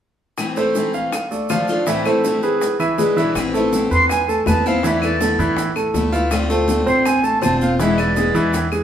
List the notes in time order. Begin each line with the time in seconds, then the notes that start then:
0.38 A2 E3 A3 C4 E4, high bongo, claves, maracas
0.56 E3 A3 C4 E4 A4 C5, high bongo, maracas
0.75 E3 A3 C4 E4, high bongo, maracas
0.94 F5, high bongo, maracas
1.12 muted steel-string acoustic guitar stroke, high bongo, claves, maracas
1.31 A3 A4 D5, high bongo, maracas
1.49 D3 F3 A3 D4 F4 F5, high bongo, low bongo, claves, maracas
1.68 A3 D4 F4, maracas
1.87 A2 E3 A3 C4 E4 E5, high bongo, maracas
2.05 E3 A3 C4 E4 A4 C5, high bongo, claves, maracas
2.24 E3 A3 C4 E4, high bongo, maracas
2.43 G#4 B4, high bongo, maracas
2.61 muted steel-string acoustic guitar stroke, high bongo, maracas
2.79 E3 E4 E5, high bongo, claves, maracas
2.98 D3 G#3 B3 E4 G#4 B4, high bongo, low bongo, maracas
3.16 B2 D3 E3 G#3 B3 E4 E5, maracas
3.35 A1 C3 E3 B3 C4 E4, high bongo, high conga, claves, maracas
3.54 E3 A3 B3 C4 E4 A4, high bongo, high conga, maracas
3.73 E3 B3 C4, high bongo, high conga, maracas
3.77 E4
3.91 E2 B4 C6, high bongo, high conga, maracas
4.09 G#5, muted steel-string acoustic guitar stroke, high bongo, high conga, claves, maracas
4.28 A3 A4 A5, high bongo, high conga, maracas
4.46 E2 E3 B3 C4 E4 B4 A5, high bongo, low bongo, high conga, claves, maracas
4.66 E3 B3 C4 E4 F5, high conga, maracas
4.83 D3 E3 A3 B3 E4 E5, high bongo, maracas
5.02 A3 B3 E4 D5, high bongo, high conga, claves, maracas
5.21 D3 A3 B3 E4 A4, high bongo, high conga, maracas
5.39 A2 E3 E4, high bongo, high conga, maracas
5.57 muted steel-string acoustic guitar stroke, high bongo, high conga, maracas
5.76 A3 A4, high bongo, high conga, claves, maracas
5.94 D2 D3 A3 B3 E4, high bongo, low bongo, high conga, maracas
6.12 A3 B3 E4 F4 F5, maracas
6.31 D3 A3 C4 F4, high bongo, high conga, claves, maracas
6.50 A3 C4 F4 A4, high bongo, high conga, maracas
6.68 D3 A3 C4 F4, high bongo, high conga, maracas
6.86 A1 C4 C5 C6, high bongo, high conga, maracas
7.05 G#5, muted steel-string acoustic guitar stroke, high bongo, high conga, claves, maracas
7.23 A3 A4 A5, high bongo, high conga, maracas
7.41 E1 D3 A3 C4 F4 C5 A5, high bongo, low bongo, high conga, claves, maracas
7.61 A3 C4 F4 F5, high conga, maracas
7.79 B2 E3 G#3 B3 E4 E5, high bongo, maracas
7.98 E3 G#3 B3 E4 D5, high bongo, high conga, claves, maracas
8.16 E3 G#3 B3 E4 G#4, high bongo, high conga, maracas
8.34 E2 E3 E4, high bongo, high conga, maracas
8.53 muted steel-string acoustic guitar stroke, high bongo, high conga, maracas
8.72 G#3 G#4, high bongo, high conga, claves, maracas